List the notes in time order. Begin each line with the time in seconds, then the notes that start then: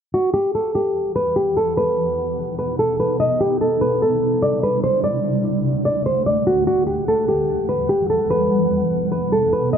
0.14 E2 E3 F#4 G4 F#5
0.34 G4
0.55 A4
0.75 G4
1.16 B4
1.36 G4
1.57 A4
1.77 B2 B3 D#4 B4
2.59 B4
2.79 A4
3.00 B4
3.20 D#5
3.40 C3 G3 D4 E4 G4
3.61 A4
3.81 B4
4.02 A4
4.42 D5
4.63 B4
4.84 C5
5.04 D2 D3 A3 D5 F#5
5.85 D5
6.06 C5
6.26 D5
6.47 F#4
6.67 E2 E3 G3 F#4
6.87 G4
7.08 A4
7.28 G4
7.69 B4
7.89 G4
8.10 A4
8.30 B2 B3 D#4 B4
9.12 B4
9.32 A4
9.53 B4
9.73 D#5